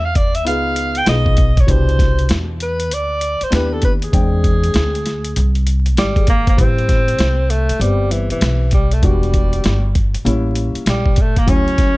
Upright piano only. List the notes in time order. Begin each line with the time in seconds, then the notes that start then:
0.45 B3 D#4 F4 G#4
1.05 B3 D#4 F4 G#4
1.67 B2 D4 E4 G4
3.50 B3 D4 E4 G4
4.12 G#3 C4 D4 G5
6.16 G#4
6.28 A#4
6.47 C5
6.57 G3 C4 E4 B4
7.79 G3 B3 C4 G4
9.02 G3 B3 D4 F#4
10.24 G3 A#3 C#4 E4
11.46 F#3 A3 C#4 E4